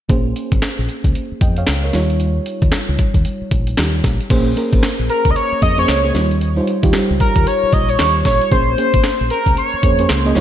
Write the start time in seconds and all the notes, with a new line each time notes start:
0.09 A#1 A#3 C#4 G#4 C5, kick, closed hi-hat
0.36 closed hi-hat
0.52 G#1, kick, closed hi-hat
0.62 snare, clap, closed hi-hat
0.79 A#1
0.89 closed hi-hat
1.04 C#2, kick, closed hi-hat
1.15 closed hi-hat
1.32 muted fingered electric bass stroke
1.41 F2 D#5 G5, kick, closed hi-hat
1.56 C#5 F5, closed hi-hat
1.67 C#2, snare, clap, closed hi-hat
1.84 A#4 C#5
1.93 D#2 G3 D#4 F4 C#5, snare, closed hi-hat
2.10 closed hi-hat
2.20 closed hi-hat
2.46 closed hi-hat
2.62 D#2, kick, closed hi-hat
2.72 snare, clap, closed hi-hat
2.89 C#2
2.98 kick, closed hi-hat
3.14 D#2, kick, closed hi-hat
3.25 closed hi-hat
3.41 muted fingered electric bass stroke
3.51 A#1, kick, closed hi-hat
3.67 closed hi-hat
3.77 D#2 G3 D#4 F4 G4, snare, clap, closed hi-hat
4.04 A#1, kick, snare, closed hi-hat
4.20 closed hi-hat
4.30 A#1 A#3 C#4 G#4 C5, kick, closed hi-hat, crash
4.56 A#3 C#4 G#4 A#4, closed hi-hat
4.73 G#1, kick, closed hi-hat
4.83 snare, clap, closed hi-hat
4.99 A#1
5.09 A#4, closed hi-hat
5.25 C#2, kick, closed hi-hat
5.30 D#5
5.36 C#5, closed hi-hat
5.52 muted fingered electric bass stroke
5.62 F2 A#3 C#4 G#4 D#5, kick, closed hi-hat
5.78 A#3 C#4 G#4 C5 C#5, closed hi-hat
5.88 C#2, snare, clap, closed hi-hat
6.04 A#3 C#4 G#4 C5
6.14 D#2 G3 D#4 F4 C#5, snare, closed hi-hat
6.31 closed hi-hat
6.41 closed hi-hat
6.56 G3 D#4 F4 C5
6.67 closed hi-hat
6.83 D#2 G3 D#4 F4 G4, kick, closed hi-hat
6.93 snare, clap, closed hi-hat
7.11 C#2
7.20 A#4, kick, closed hi-hat
7.36 D#2, kick, closed hi-hat
7.47 C#5, closed hi-hat
7.63 muted fingered electric bass stroke
7.72 A#1 D#5, kick, closed hi-hat
7.89 C#5, closed hi-hat
7.99 D#2, snare, clap, closed hi-hat
8.25 A#1 C#5, kick, snare, closed hi-hat
8.41 closed hi-hat
8.51 A#1 A#3 C#4 G#4 C5, kick, closed hi-hat
8.78 A#3 C#4 G#4 C5, closed hi-hat
8.94 G#1, kick, closed hi-hat
9.04 snare, clap, closed hi-hat
9.21 A#1
9.30 A#4, closed hi-hat
9.46 C#2, kick, closed hi-hat
9.57 C#5, closed hi-hat
9.74 muted fingered electric bass stroke
9.83 F2 A#3 C#4 G#4 C5, kick, closed hi-hat
9.99 A#3 C#4 G#4 C5, closed hi-hat
10.09 C#2 C5, snare, clap, closed hi-hat
10.25 A#3 C#4 G#4 D#5
10.35 D#2 G3 D#4 F4 C#5, snare, closed hi-hat